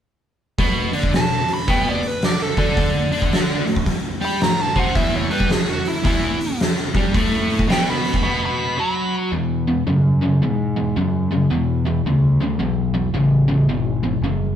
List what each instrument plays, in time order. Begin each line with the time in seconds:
0.58 overdriven electric guitar B2 B3, kick, open hi-hat
0.93 overdriven electric guitar D3 D4, open hi-hat
1.03 kick
1.13 overdriven electric guitar B2, lead electric guitar A5, snare, open hi-hat
1.48 open hi-hat
1.54 lead electric guitar B5
1.68 overdriven electric guitar B2 B3, lead electric guitar G5, kick, open hi-hat
1.89 lead electric guitar D5
2.03 open hi-hat
2.07 lead electric guitar B4
2.22 lead electric guitar D5, snare, open hi-hat
2.42 lead electric guitar A4
2.57 overdriven electric guitar D3 D4, lead electric guitar A4, kick, open hi-hat
2.77 kick, open hi-hat
3.12 overdriven electric guitar D3 D4, open hi-hat
3.22 kick
3.33 snare, open hi-hat
3.66 overdriven electric guitar A2, open hi-hat
3.76 kick
3.86 kick, open hi-hat
4.21 overdriven electric guitar G3 G4, open hi-hat
4.25 lead electric guitar B5
4.41 overdriven electric guitar A2, lead electric guitar A#5, snare, open hi-hat
4.62 lead electric guitar A5
4.76 overdriven electric guitar C3 C4, lead electric guitar F#5, kick, open hi-hat
4.95 overdriven electric guitar E2 E3, lead electric guitar E5, kick, open hi-hat
5.16 lead electric guitar C#5
5.30 overdriven electric guitar G2 G3, lead electric guitar B4, open hi-hat
5.40 kick
5.50 overdriven electric guitar E2, lead electric guitar G#4, snare, open hi-hat
5.69 lead electric guitar F#4
5.85 lead electric guitar E4, open hi-hat
6.04 overdriven electric guitar E2 E3, lead electric guitar E4, kick, open hi-hat
6.41 open hi-hat
6.60 snare, open hi-hat
6.94 overdriven electric guitar G2 G3, kick, open hi-hat
7.14 overdriven electric guitar A2 A3, kick, open hi-hat
7.50 open hi-hat
7.59 kick
7.68 overdriven electric guitar B2 B3, lead electric guitar G5, snare, open hi-hat
7.90 lead electric guitar B5
8.05 open hi-hat
8.14 kick
8.22 overdriven electric guitar B2 B3
8.46 lead electric guitar B5
8.78 overdriven electric guitar F#3 F#4, lead electric guitar B5
9.32 fingered electric bass E2, overdriven electric guitar E2 B2
9.68 overdriven electric guitar E2 B2
9.87 overdriven electric guitar E2 C#3, fingered electric bass F#2
10.21 overdriven electric guitar E2 C#3
10.42 overdriven electric guitar E2 B2, fingered electric bass G#2
10.76 overdriven electric guitar E2 B2
10.96 overdriven electric guitar E2 C#3, fingered electric bass F#2
11.31 overdriven electric guitar E2 C#3
11.51 overdriven electric guitar E2 B2, fingered electric bass E2
11.86 overdriven electric guitar E2 B2
12.05 fingered electric bass D2, overdriven electric guitar E2 C#3
12.40 overdriven electric guitar E2 C#3
12.59 fingered electric bass B1, overdriven electric guitar E2 B2
12.94 overdriven electric guitar E2 B2
13.14 fingered electric bass A1, overdriven electric guitar E2 C#3
13.48 overdriven electric guitar E2 C#3
13.68 fingered electric bass G#1, overdriven electric guitar E2 B2
14.03 overdriven electric guitar E2 B2
14.21 fingered electric bass F#1, overdriven electric guitar E2 C#3